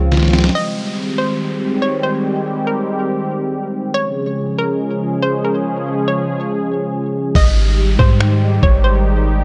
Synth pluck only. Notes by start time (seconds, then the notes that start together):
0.55 D#5
1.18 C5
1.82 C#5
2.03 C5
2.67 A#4
3.94 C#5
4.59 A#4
5.22 C5
5.45 A#4
6.08 C#5
7.36 D#5
7.99 C5
8.63 C#5
8.84 C5